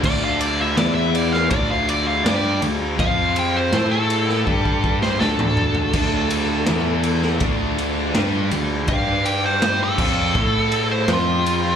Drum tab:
CC |x---------------|----------------|x---------------|------x---------|
RD |--x-x-x-x-x-x-x-|x-x-x-x---------|x-x-x-x-x-x-x-x-|x-x-x-----x-x-x-|
SD |----o--o----o---|----o--o---oo---|----o--o----o---|----o-------o---|
T2 |----------------|-------------o--|----------------|----------------|
FT |----------------|--------------oo|----------------|----------------|
BD |o-------o-------|o-------ooo-----|o-------o-------|o-----o-o-------|